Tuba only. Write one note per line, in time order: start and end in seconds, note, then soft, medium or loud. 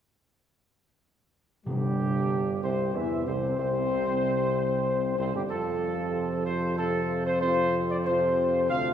1.67 2.59 G1 medium
2.63 2.93 C2 medium
2.95 3.25 E2 medium
3.27 3.57 C2 medium
3.59 5.15 C2 medium
5.20 5.34 C2 medium
5.35 5.42 G1 medium
5.50 8.72 F2 medium
8.70 8.94 D2 medium